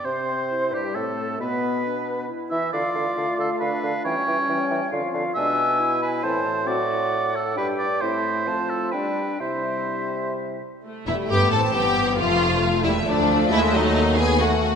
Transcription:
0.04 C3 C4 C5
0.51 E4
0.71 G2 G3 G4
0.95 A2 A3 C4 A4
1.39 B2 B3 B4
1.86 D4
2.29 E4
2.50 E3 E4 E5
2.72 D3 A3 F4 D5 F5
2.93 D3 F5
3.15 D3 F5
3.37 D3 A4 F5
3.59 D3 D4 B4 F5
3.82 D3 F5
4.04 E3 G3 C#4 C#5 G5
4.26 E3 G5
4.47 E3 G5
4.68 E3 G5
4.90 D3 F3 C4 F4 F5
5.12 D3 F5
5.35 B2 G#3 D4 E5 G#5
5.80 E4
6.02 B4
6.23 A2 E3 C4 C5 A5
6.66 F#3 C4 F#4 D5 F#5
7.36 A4
7.56 G2 G3 D4 G4 B4 G5
7.79 D5
8.00 A2 A3 C4 E4 C5 E5
8.46 F3 A3 C4 F4 A5
8.70 A4
8.91 G3 D4 B4 G5
9.39 C3 G3 E4 C5 E5
10.84 A3
11.07 E1 E2 G3 E4 E5
11.29 G1 G2 B3 G4 G5
11.50 A1 A2 C4 A4 A5
11.73 G1 G2 E3 B3 G4 G5
12.17 F1 F2 F3 A3 F4 F5
12.63 A3
12.84 E1 E2 G3 E4 E5
13.06 D2 F3 D4 D5
13.51 D#2 G#3 E4 E5
13.73 F#3 D#4 D#5
14.17 B3 G#4 G#5
14.40 A3 F#4 F#5

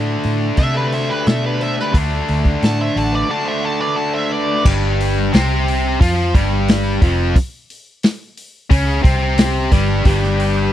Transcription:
Already playing: A2 D3 A3 D4
0.23 A2, open hi-hat
0.56 C3 D3 A3 A4 E5, kick, open hi-hat
0.61 D4
0.75 G4 B4
0.92 C5 E5, open hi-hat
1.09 G4 B4
1.26 B2 A4 E5, snare, open hi-hat
1.43 G4 B4
1.59 C5 E5, open hi-hat
1.78 G4 B4, snare
1.93 D2 D3 A3 D4, kick, open hi-hat
2.28 D2, open hi-hat
2.45 kick
2.62 A2 F#5 A5, snare, open hi-hat
2.79 C5 E5
2.96 A1 F#5 A5, open hi-hat
3.12 B4 D5
3.30 D3 A3 D4 F#5 A5
3.45 C5 E5
3.61 F#5 A5
3.80 B4 D5
3.96 F#5 A5
4.13 C5 E5
4.31 B4 D5
4.65 G1 G2 G3, kick, crash
5.00 open hi-hat
5.33 C2 C3 C4, snare, open hi-hat
5.68 open hi-hat
6.00 F2 F3 F4, kick, open hi-hat
6.34 G1 G2 G3, kick, open hi-hat
6.68 snare, open hi-hat
7.02 F1 F2 F3, kick, open hi-hat
7.36 kick, open hi-hat
7.70 open hi-hat
8.03 snare, open hi-hat
8.37 open hi-hat
8.70 C#2 C#3 C#4, kick, open hi-hat
9.02 C2 C3 C4, kick, open hi-hat
9.38 snare, open hi-hat
9.71 G1 G2 G3, kick, open hi-hat
10.05 G1 G2 G3 D4 G4 B4 G5, kick, open hi-hat
10.23 snare
10.40 open hi-hat

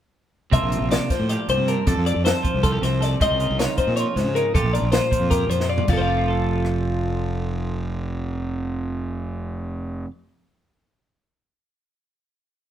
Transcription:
0.52 C2 C3 A#3 D4 F4 E5, kick, closed hi-hat
0.62 A#1
0.72 F4, closed hi-hat
0.81 A#1
0.91 D4 D5, snare, closed hi-hat
1.10 F3 C5, kick, snare, closed hi-hat
1.20 A2
1.29 G4 D5, closed hi-hat
1.49 C2 G2 C5, closed hi-hat
1.58 C3
1.68 D4 A#4, closed hi-hat
1.86 F2 D4 A4, kick, closed hi-hat
1.97 F2
2.06 A4 D5, closed hi-hat
2.16 F2
2.25 A4 C5, snare, closed hi-hat
2.43 F3, kick, closed hi-hat
2.54 C2
2.63 F4 A4, kick, closed hi-hat
2.72 G4
2.82 C2 C3 C5, snare, closed hi-hat
3.01 A4 D5, snare, closed hi-hat
3.20 C#2 C#3 C4 D#4 F4 D#5, kick, closed hi-hat
3.30 C2
3.40 F4, closed hi-hat
3.50 C2
3.59 D#4 C#5, snare, closed hi-hat
3.78 F3 C5, kick, closed hi-hat
3.87 A#2
3.96 F4 C#5, closed hi-hat
4.16 C#2 G#2 C5, snare, closed hi-hat
4.24 C#3
4.35 D#4 A#4, closed hi-hat
4.54 A#1 A#2 D4 F4 G4 A4, kick, closed hi-hat
4.63 A#1
4.73 A#4 D5, closed hi-hat
4.82 A#1
4.92 F4 C5, snare, closed hi-hat
5.11 F3, kick, closed hi-hat
5.20 F2
5.30 G4 A#4, kick, closed hi-hat
5.49 F2 F3 C5, closed hi-hat
5.60 snare
5.69 F4 D5
5.78 floor tom
5.87 F1 F2 F4, kick, crash
5.93 A4
5.97 F3 C5
6.01 F5
6.08 D4
6.18 F4
6.28 A4
6.65 cross-stick

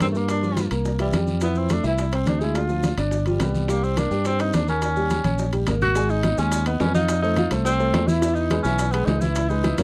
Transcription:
0.00 G2 C4, high bongo, low bongo, high conga, high timbale, short guiro, maracas
0.12 A3 A#3 A#4, high bongo, high conga, short guiro, maracas
0.17 A#3
0.28 D4, high bongo, high conga, high timbale, long guiro, maracas
0.42 F3 F4, high bongo, high conga, maracas
0.57 high bongo, high conga, high timbale, short guiro, maracas
0.71 C2 A#3 A#4, high bongo, high conga, high timbale, short guiro, maracas
0.85 high bongo, high conga, long guiro, maracas
0.99 E3 G3 E4, high conga, high timbale, maracas
1.13 F2 G3 G4, high bongo, low bongo, high conga, high timbale, short guiro, maracas
1.27 high bongo, high conga, short guiro, maracas
1.41 E3 B3 E4, high bongo, high conga, high timbale, long guiro, maracas
1.55 C4, high conga, maracas
1.69 A3 D4 A4, high bongo, high conga, high timbale, short guiro, maracas
1.84 C2 E4 E5, high bongo, high conga, short guiro, maracas
1.98 high bongo, high conga, high timbale, long guiro, maracas
2.12 C4 C5, high bongo, high conga, high timbale, maracas
2.26 D2 D4, high bongo, low bongo, high conga, high timbale, short guiro, maracas
2.39 G#3 D#4 E4 G#4, high bongo, high conga, short guiro, maracas
2.55 F4, high bongo, high conga, high timbale, long guiro, maracas
2.69 F3 F4, high bongo, high conga, maracas
2.83 high bongo, high conga, high timbale, short guiro, maracas
2.98 G1 D4 D5, high bongo, high conga, high timbale, short guiro, maracas
3.11 high bongo, high conga, long guiro, maracas
3.26 F3 G3 F4, high conga, high timbale, maracas
3.40 C2 B3 B4, high bongo, low bongo, high conga, high timbale, short guiro, maracas
3.55 high bongo, high conga, short guiro, maracas
3.68 G3 A#3 G4, high bongo, high timbale, maracas
3.83 C4, high conga, maracas
3.97 A#3 D4 A#4, high bongo, high conga, high timbale, short guiro, maracas
4.11 G2 G4 G5, high bongo, high conga, short guiro, maracas
4.25 C4, high bongo, high conga, high timbale, long guiro, maracas
4.39 C4 D#4 C5, high bongo, high conga, high timbale, maracas
4.53 D#2 D4, high bongo, low bongo, high conga, high timbale, short guiro, maracas
4.68 A#3 C#4 A#4, high bongo, high conga, short guiro, maracas
4.82 high bongo, high conga, high timbale, maracas
4.96 G3 G4, high bongo, high conga, maracas
5.10 high bongo, high conga, high timbale, short guiro, maracas
5.24 A#1 C#4 C#5, high bongo, high conga, high timbale, short guiro, maracas
5.38 high bongo, long guiro, maracas
5.53 G3 G4, low conga, high timbale, maracas
5.67 G#1 A#3 A#4, high bongo, low bongo, low conga, high timbale, short guiro, maracas
5.81 F#4, high bongo, low conga, short guiro, maracas
5.95 G#3 G#4 G#5, high bongo, high conga, high timbale, long guiro, maracas
6.10 D#4, high bongo, high conga, maracas
6.23 B3 B4 D#5, high bongo, high conga, high timbale, low timbale, short guiro, maracas
6.38 D#2 G#3 C#4 G#4 G#5, high bongo, high conga, short guiro, maracas
6.52 high bongo, high conga, high timbale, maracas
6.66 B3 B4 D#5, high conga, high timbale, maracas
6.80 F2 C#4, high bongo, low bongo, high conga, low timbale, short guiro, maracas
6.94 F3 D#4 F4 F5, high bongo, high conga, short guiro, maracas
7.08 high bongo, high timbale, maracas
7.22 A3 D#4 A4 C5, high bongo, high conga, maracas
7.36 F3 F4 F5, high bongo, high conga, high timbale, low timbale, short guiro, maracas
7.51 C2 A3 A4 C5, high bongo, low conga, high timbale, short guiro, maracas
7.65 C4, high bongo, high conga, maracas
7.79 A3 A4 C5, high bongo, high conga, maracas
7.94 E2, high bongo, low bongo, high conga, high timbale, low timbale, short guiro, maracas
8.07 E3 E4 E5, high conga, short guiro, maracas
8.22 E3 E4 E5, high bongo, high timbale, long guiro, maracas
8.34 D#4, high bongo, high conga, maracas
8.50 G#3 G#4 B4, high bongo, high conga, high timbale, low timbale, short guiro, maracas
8.63 B1 E3 C#4 E4 E5, high bongo, high conga, short guiro, maracas
8.79 high bongo, high conga, high timbale, maracas
8.91 G#3 B3 G#4 B4, high conga, high timbale, maracas
9.05 C#2 D#4, high bongo, low bongo, high conga, low timbale, short guiro, maracas
9.20 E3 E4 E5, high bongo, high conga, short guiro, maracas
9.35 high bongo, high conga, high timbale, maracas
9.48 G#3 D#4 G#4 B4, high bongo, high conga, maracas
9.64 E3 E4 E5, high bongo, high conga, high timbale, low timbale, short guiro, maracas
9.78 F#2 A#3 A#4 C#5, high bongo, low conga, high timbale, short guiro, maracas

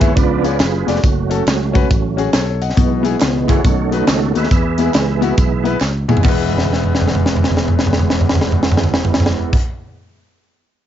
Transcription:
Already playing: D#2 G#3 B3 E4
0.00 G#4 B4 C#5 E5, kick, clap, closed hi-hat, tambourine
0.15 C#2 C#3 F3 B3 D4 F4 B4 D5, kick, closed hi-hat, tambourine
0.43 B3 D4 F4 G#4 C#5, closed hi-hat, tambourine
0.60 F#1 G#4, snare, clap, closed hi-hat, tambourine
0.86 F1 A3 B3 C#4 D4 F4 F#4 G#4 D5, snare, closed hi-hat, tambourine
0.96 snare
1.03 F#1 F#3 A3 C#4, kick, closed hi-hat, tambourine
1.30 C#4 F#4 A4, closed hi-hat, tambourine
1.47 C#2, snare, clap, closed hi-hat, tambourine
1.74 C#4 F#4 B4, kick, closed hi-hat, tambourine
1.90 A1, kick, closed hi-hat, tambourine
2.17 F#3 A3 C#4 F#4 G#4, closed hi-hat, tambourine
2.33 B1 A4 C#5, snare, clap, closed hi-hat, tambourine
2.62 D#5 F#5, closed hi-hat, tambourine
2.70 snare
2.77 B1 B2 E3 G#3 B3, kick, closed hi-hat, tambourine
3.03 B3 E4 G#4, closed hi-hat, tambourine
3.21 C#2, snare, clap, closed hi-hat, tambourine
3.48 B3 E4 F#4 G#4 A4 C#5, kick, clap, closed hi-hat, tambourine
3.64 B1 B2 D#3 A3 C#4, kick, closed hi-hat, tambourine
3.91 A3 B3 D#4 F#4 B4, closed hi-hat, tambourine
4.08 C#2 D#5, snare, clap, closed hi-hat, tambourine
4.34 D#2 A3 B3 D#4 F#4 G#4 B4 E5, closed hi-hat, tambourine
4.44 snare
4.51 E2 E3, kick, closed hi-hat, tambourine
4.78 E3 G#3 B3 E4 G#4, closed hi-hat, tambourine
4.94 C#2, snare, clap, closed hi-hat, tambourine
5.21 B3 E4 F#4, closed hi-hat, tambourine
5.37 B1, kick, closed hi-hat, tambourine
5.63 E3 G#3 B3 E4 B4, closed hi-hat, tambourine
5.81 C#2, snare, clap, tambourine
6.08 D#2 B3 E4 G#4, mid tom, tambourine
6.17 G#3, floor tom
6.23 E1 E2 G#3 B3 E4, kick, clap, crash
6.28 B4
6.52 floor tom
6.58 snare
6.65 floor tom
6.73 snare
6.84 floor tom
6.95 snare
7.01 floor tom
7.08 snare
7.15 floor tom
7.26 snare
7.37 floor tom
7.44 snare
7.50 floor tom
7.57 snare
7.68 floor tom
7.79 snare
7.87 floor tom
7.93 snare
7.99 floor tom
8.10 snare
8.21 floor tom
8.29 snare
8.35 floor tom
8.41 snare
8.52 floor tom
8.63 snare
8.72 floor tom
8.77 snare
8.84 floor tom
8.94 snare
9.05 floor tom
9.14 snare
9.20 floor tom
9.26 snare
9.53 kick, crash

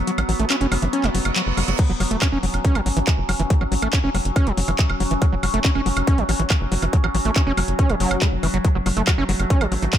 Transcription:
Already playing: F#3 B3
0.07 F#3, closed hi-hat
0.18 A1 F#3, closed hi-hat, high woodblock
0.29 A1 F#3, open hi-hat
0.40 A1 A3, closed hi-hat
0.50 C#4, clap, closed hi-hat, high woodblock
0.61 F#1 C#4, closed hi-hat
0.72 F#1 F#3, open hi-hat, high woodblock
0.82 F#1 E3, closed hi-hat
0.93 C#4, closed hi-hat, reverse cymbal
1.04 F#1 F#3, clap, closed hi-hat, high woodblock
1.15 F#1 F#3, open hi-hat
1.25 F#1, closed hi-hat, high woodblock
1.36 F#3, clap, closed hi-hat
1.47 F#1
1.57 F#1 F#3, open hi-hat, high woodblock
1.68 F#1 F#3, closed hi-hat
1.79 F#3 C#4, kick, closed hi-hat, crash
1.90 F#1 F#3
2.00 F#1 F#3, open hi-hat, high woodblock
2.11 F#1 A3, closed hi-hat
2.22 C#4, kick, clap, closed hi-hat, high woodblock
2.32 F#1 C#4
2.43 F#1 F#3, open hi-hat
2.54 F#1, closed hi-hat, high woodblock
2.65 C#4, kick, closed hi-hat
2.75 A1 F#3, closed hi-hat, high woodblock
2.86 A1 F#3, open hi-hat
2.97 A1 E3, closed hi-hat
3.07 F#3, kick, clap, closed hi-hat, high woodblock
3.18 F#1
3.29 F#1 F#3, open hi-hat, high woodblock
3.40 F#1 E3, closed hi-hat
3.50 F#3, kick, closed hi-hat
3.61 A1 F#3, high woodblock
3.72 A1 F#3, open hi-hat
3.82 A1 A3, closed hi-hat, high woodblock
3.93 C#4, kick, clap, closed hi-hat
4.04 F#1 C#4
4.15 F#1 F#3, open hi-hat, high woodblock
4.25 F#1, closed hi-hat
4.36 C#4, kick, closed hi-hat, high woodblock
4.47 F#1 F#3, closed hi-hat
4.57 F#1 F#3, open hi-hat
4.68 F#1 E3, closed hi-hat, high woodblock
4.79 F#3, kick, clap, closed hi-hat
4.90 F#1, high woodblock
5.00 F#1 F#3, open hi-hat
5.11 F#1 E3, closed hi-hat
5.22 F#3, kick, closed hi-hat, high woodblock
5.32 F#1 F#3
5.43 F#1 F#3, open hi-hat, high woodblock
5.54 F#1 A3, closed hi-hat
5.65 C#4, kick, clap, closed hi-hat
5.75 F#1 C#4, high woodblock
5.86 F#1 F#3, open hi-hat
5.97 F#1, closed hi-hat, high woodblock
6.07 C#4, kick, closed hi-hat
6.18 A1 F#3, closed hi-hat
6.29 A1 F#3, open hi-hat, high woodblock
6.40 A1 E3, closed hi-hat
6.50 F#3, kick, clap, closed hi-hat, high woodblock
6.61 F#1
6.72 F#1 F#3, open hi-hat
6.82 F#1 E3, closed hi-hat, high woodblock
6.93 F#3, kick, closed hi-hat
7.04 A1 F#3, high woodblock
7.15 A1 F#3, open hi-hat
7.25 A1 A3, closed hi-hat
7.36 C#4, kick, clap, closed hi-hat, high woodblock
7.47 F#1 C#4
7.57 F#1 F#3, open hi-hat, high woodblock
7.68 F#1, closed hi-hat
7.79 C#4, kick, closed hi-hat
7.90 F#1 F#3, closed hi-hat, high woodblock
8.00 F#1 F#3, open hi-hat
8.11 F#1, closed hi-hat, high woodblock
8.22 G#3, kick, clap, closed hi-hat
8.32 F#1
8.43 F#1 E3, open hi-hat, high woodblock
8.54 F#1 F#3, closed hi-hat
8.65 F#3 A3, kick, closed hi-hat
8.75 F#1 F#3
8.86 F#1 F#3, open hi-hat, high woodblock
8.97 F#1 A3, closed hi-hat
9.07 F#4, kick, clap, closed hi-hat, high woodblock
9.18 F#1 C#4
9.29 F#1 F#3, open hi-hat
9.40 F#1, closed hi-hat, high woodblock
9.50 C#4, kick, closed hi-hat
9.61 A1 F#3, closed hi-hat, high woodblock
9.72 A1 F#3, open hi-hat
9.82 A1 E3, closed hi-hat
9.93 F#3, kick, clap, closed hi-hat, high woodblock

